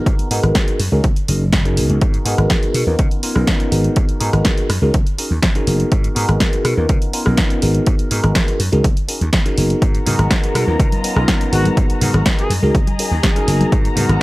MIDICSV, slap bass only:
0, 0, Header, 1, 3, 480
1, 0, Start_track
1, 0, Tempo, 487805
1, 64, Time_signature, 4, 2, 24, 8
1, 13998, End_track
2, 0, Start_track
2, 0, Title_t, "Slap bass"
2, 0, Program_c, 0, 36
2, 62, Note_on_c, 0, 44, 95
2, 182, Note_off_c, 0, 44, 0
2, 303, Note_on_c, 0, 44, 89
2, 380, Note_off_c, 0, 44, 0
2, 427, Note_on_c, 0, 32, 95
2, 499, Note_off_c, 0, 32, 0
2, 783, Note_on_c, 0, 42, 100
2, 860, Note_off_c, 0, 42, 0
2, 906, Note_on_c, 0, 37, 100
2, 979, Note_off_c, 0, 37, 0
2, 1265, Note_on_c, 0, 30, 98
2, 1743, Note_on_c, 0, 37, 86
2, 1757, Note_off_c, 0, 30, 0
2, 1820, Note_off_c, 0, 37, 0
2, 1865, Note_on_c, 0, 37, 88
2, 1939, Note_off_c, 0, 37, 0
2, 2219, Note_on_c, 0, 44, 87
2, 2298, Note_off_c, 0, 44, 0
2, 2343, Note_on_c, 0, 32, 96
2, 2418, Note_off_c, 0, 32, 0
2, 2700, Note_on_c, 0, 47, 96
2, 2779, Note_off_c, 0, 47, 0
2, 2823, Note_on_c, 0, 39, 95
2, 2897, Note_off_c, 0, 39, 0
2, 2941, Note_on_c, 0, 49, 94
2, 3019, Note_off_c, 0, 49, 0
2, 3303, Note_on_c, 0, 35, 85
2, 3378, Note_off_c, 0, 35, 0
2, 3659, Note_on_c, 0, 32, 86
2, 3813, Note_off_c, 0, 32, 0
2, 3901, Note_on_c, 0, 44, 95
2, 4019, Note_off_c, 0, 44, 0
2, 4143, Note_on_c, 0, 44, 89
2, 4220, Note_off_c, 0, 44, 0
2, 4262, Note_on_c, 0, 32, 93
2, 4337, Note_off_c, 0, 32, 0
2, 4621, Note_on_c, 0, 42, 103
2, 4699, Note_off_c, 0, 42, 0
2, 4741, Note_on_c, 0, 37, 95
2, 4817, Note_off_c, 0, 37, 0
2, 5223, Note_on_c, 0, 39, 87
2, 5298, Note_off_c, 0, 39, 0
2, 5581, Note_on_c, 0, 30, 84
2, 5734, Note_off_c, 0, 30, 0
2, 5824, Note_on_c, 0, 44, 99
2, 5975, Note_off_c, 0, 44, 0
2, 6064, Note_on_c, 0, 44, 94
2, 6141, Note_off_c, 0, 44, 0
2, 6187, Note_on_c, 0, 32, 99
2, 6259, Note_off_c, 0, 32, 0
2, 6542, Note_on_c, 0, 47, 98
2, 6619, Note_off_c, 0, 47, 0
2, 6666, Note_on_c, 0, 39, 102
2, 6739, Note_off_c, 0, 39, 0
2, 6782, Note_on_c, 0, 49, 97
2, 6860, Note_off_c, 0, 49, 0
2, 7150, Note_on_c, 0, 35, 86
2, 7221, Note_off_c, 0, 35, 0
2, 7507, Note_on_c, 0, 32, 87
2, 7657, Note_off_c, 0, 32, 0
2, 7741, Note_on_c, 0, 44, 97
2, 7861, Note_off_c, 0, 44, 0
2, 7984, Note_on_c, 0, 44, 90
2, 8061, Note_off_c, 0, 44, 0
2, 8107, Note_on_c, 0, 32, 98
2, 8179, Note_off_c, 0, 32, 0
2, 8461, Note_on_c, 0, 42, 99
2, 8539, Note_off_c, 0, 42, 0
2, 8587, Note_on_c, 0, 37, 100
2, 8660, Note_off_c, 0, 37, 0
2, 9066, Note_on_c, 0, 39, 85
2, 9139, Note_off_c, 0, 39, 0
2, 9424, Note_on_c, 0, 30, 84
2, 9576, Note_off_c, 0, 30, 0
2, 9662, Note_on_c, 0, 44, 93
2, 9815, Note_off_c, 0, 44, 0
2, 9903, Note_on_c, 0, 44, 91
2, 9980, Note_off_c, 0, 44, 0
2, 10026, Note_on_c, 0, 32, 97
2, 10099, Note_off_c, 0, 32, 0
2, 10381, Note_on_c, 0, 47, 96
2, 10459, Note_off_c, 0, 47, 0
2, 10504, Note_on_c, 0, 39, 98
2, 10578, Note_off_c, 0, 39, 0
2, 10623, Note_on_c, 0, 49, 94
2, 10700, Note_off_c, 0, 49, 0
2, 10984, Note_on_c, 0, 35, 89
2, 11058, Note_off_c, 0, 35, 0
2, 11340, Note_on_c, 0, 32, 85
2, 11494, Note_off_c, 0, 32, 0
2, 11583, Note_on_c, 0, 44, 92
2, 11699, Note_off_c, 0, 44, 0
2, 11822, Note_on_c, 0, 44, 92
2, 11900, Note_off_c, 0, 44, 0
2, 11945, Note_on_c, 0, 32, 97
2, 12019, Note_off_c, 0, 32, 0
2, 12300, Note_on_c, 0, 42, 102
2, 12379, Note_off_c, 0, 42, 0
2, 12424, Note_on_c, 0, 37, 99
2, 12498, Note_off_c, 0, 37, 0
2, 12904, Note_on_c, 0, 39, 89
2, 12978, Note_off_c, 0, 39, 0
2, 13261, Note_on_c, 0, 30, 88
2, 13414, Note_off_c, 0, 30, 0
2, 13502, Note_on_c, 0, 44, 96
2, 13655, Note_off_c, 0, 44, 0
2, 13741, Note_on_c, 0, 44, 91
2, 13819, Note_off_c, 0, 44, 0
2, 13864, Note_on_c, 0, 32, 97
2, 13938, Note_off_c, 0, 32, 0
2, 13998, End_track
3, 0, Start_track
3, 0, Title_t, "Muted slap bass strokes"
3, 188, Note_on_c, 9, 29, 40
3, 286, Note_off_c, 9, 29, 0
3, 1147, Note_on_c, 9, 29, 41
3, 1245, Note_off_c, 9, 29, 0
3, 4025, Note_on_c, 9, 29, 41
3, 4123, Note_off_c, 9, 29, 0
3, 7866, Note_on_c, 9, 29, 41
3, 7965, Note_off_c, 9, 29, 0
3, 11705, Note_on_c, 9, 29, 41
3, 11803, Note_off_c, 9, 29, 0
3, 13998, End_track
0, 0, End_of_file